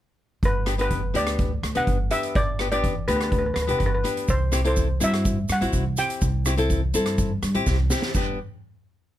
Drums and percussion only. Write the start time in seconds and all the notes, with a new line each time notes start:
0.43 kick, closed hi-hat
0.66 cross-stick, closed hi-hat
0.79 closed hi-hat
0.91 kick, closed hi-hat
1.15 closed hi-hat
1.27 cross-stick, closed hi-hat
1.39 kick, closed hi-hat
1.63 cross-stick, closed hi-hat
1.75 closed hi-hat
1.87 kick, closed hi-hat
2.11 closed hi-hat
2.23 closed hi-hat
2.35 kick, closed hi-hat
2.59 cross-stick, closed hi-hat
2.72 closed hi-hat
2.84 kick, closed hi-hat
3.08 closed hi-hat
3.21 cross-stick, closed hi-hat
3.32 kick, closed hi-hat
3.56 cross-stick, closed hi-hat
3.69 closed hi-hat
3.80 kick, closed hi-hat
4.05 closed hi-hat
4.17 closed hi-hat
4.28 kick, closed hi-hat, shaker
4.52 cross-stick, closed hi-hat, shaker
4.65 closed hi-hat
4.76 kick, closed hi-hat, shaker
5.01 closed hi-hat, shaker
5.14 cross-stick, closed hi-hat
5.25 kick, closed hi-hat, shaker
5.49 cross-stick, closed hi-hat, shaker
5.62 closed hi-hat
5.73 kick, closed hi-hat, shaker
5.97 closed hi-hat, shaker
6.10 closed hi-hat, shaker
6.21 kick, closed hi-hat, shaker
6.46 cross-stick, closed hi-hat, shaker
6.58 closed hi-hat, shaker
6.70 kick, closed hi-hat, shaker
6.94 closed hi-hat, shaker
7.06 cross-stick, closed hi-hat, shaker
7.18 kick, closed hi-hat, shaker
7.43 cross-stick, closed hi-hat, shaker
7.55 closed hi-hat, shaker
7.66 kick, snare, shaker
7.90 snare, shaker
8.02 snare, shaker
8.14 kick, crash, shaker